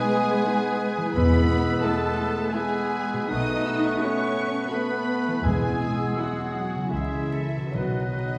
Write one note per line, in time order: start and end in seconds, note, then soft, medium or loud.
0.00 1.08 B2 soft
0.00 0.29 G#3 medium
0.00 1.10 G#3 medium
0.00 1.12 G#3 medium
0.00 1.00 B3 soft
0.00 1.10 B3 medium
0.00 0.29 D#4 medium
0.00 1.13 D#4 soft
0.00 1.09 G#4 soft
0.00 1.10 G#4 medium
0.00 1.11 B4 medium
0.00 1.12 B4 medium
0.00 1.12 G#5 loud
0.00 1.11 D#6 medium
0.47 0.97 G#3 medium
0.47 0.98 D#4 medium
0.97 3.25 E3 medium
1.02 3.16 B3 soft
1.06 3.29 E4 soft
1.11 1.68 E2 medium
1.11 1.81 B3 medium
1.11 3.31 G#4 soft
1.11 2.49 B4 medium
1.11 1.82 B5 loud
1.15 2.14 E2 medium
1.15 2.50 G#3 medium
1.15 1.39 G#3 soft
1.15 2.50 B3 medium
1.15 1.39 B4 medium
1.15 1.83 B4 medium
1.15 2.50 E6 medium
1.82 2.35 G#3 medium
1.82 2.52 A3 medium
1.82 2.36 E4 medium
1.82 2.53 A4 medium
1.82 2.53 A5 medium
2.53 3.11 G#3 medium
2.53 3.29 G#3 soft
2.53 3.30 G#3 medium
2.53 3.28 B3 medium
2.53 3.11 E4 medium
2.53 3.30 G#4 medium
2.53 3.29 B4 medium
2.53 3.30 G#5 medium
2.53 3.31 E6 soft
3.13 5.39 B2 soft
3.18 5.31 B3 soft
3.22 5.43 F#4 soft
3.27 3.86 B1 medium
3.27 4.68 B3 medium
3.27 5.45 A4 soft
3.27 4.68 B4 medium
3.27 4.71 F#6 medium
3.31 3.56 A3 soft
3.31 4.69 A3 medium
3.31 4.00 D#4 medium
3.31 3.56 B4 medium
3.31 4.00 D#5 medium
3.31 3.66 D#6 medium
3.67 3.75 E6 medium
3.76 3.84 D#6 medium
3.84 3.92 C#6 medium
3.91 4.00 D#6 medium
3.99 4.53 A3 medium
3.99 4.72 C#4 medium
3.99 4.53 F#4 medium
3.99 4.70 C#6 medium
4.04 4.71 C#5 medium
4.70 5.25 A3 soft
4.70 5.45 A3 soft
4.70 5.26 B3 medium
4.70 5.45 B3 medium
4.70 5.25 F#4 soft
4.70 5.44 B4 medium
4.70 5.45 B4 medium
4.70 5.44 B5 medium
4.70 5.45 F#6 soft
5.27 6.88 E3 soft
5.32 6.90 B3 soft
5.37 6.83 E4 soft
5.41 6.02 E2 medium
5.41 6.77 G#3 medium
5.41 5.70 G#3 soft
5.41 6.16 G#3 medium
5.41 6.93 B3 soft
5.41 6.88 G#4 soft
5.41 5.70 B4 soft
5.41 6.17 G#5 medium
5.41 6.64 E6 soft
5.45 6.52 E2 medium
5.45 6.18 G#4 medium
5.45 6.77 G#4 soft
6.17 6.94 F#3 soft
6.17 6.74 G#3 soft
6.17 6.74 E4 soft
6.17 6.94 F#4 soft
6.17 6.94 F#5 medium
6.75 7.68 C#3 soft
6.80 7.70 C#4 soft
6.84 7.73 E4 soft
6.89 7.57 C#2 soft
6.89 7.52 G#3 soft
6.89 7.44 C#4 soft
6.89 7.52 E4 soft
6.89 7.75 G#4 soft
6.93 7.74 E3 soft
6.93 7.22 G#3 soft
6.93 7.44 G#3 soft
6.93 7.75 E4 soft
6.93 7.22 G#4 soft
6.93 7.35 G#4 soft
6.93 7.72 E5 medium
6.93 7.44 E6 soft
7.33 7.76 A4 soft
7.57 8.38 B2 soft
7.61 8.38 F#4 soft
7.66 8.38 B4 soft
7.72 8.38 B1 soft
7.72 8.38 B2 medium
7.72 8.38 D#3 soft
7.72 8.38 F#3 soft
7.72 8.38 B3 soft
7.72 8.06 B3 soft
7.72 8.38 D#4 soft
7.72 8.06 F#4 soft
7.72 8.38 B4 soft
7.72 8.38 D#5 medium
7.72 8.38 F#6 soft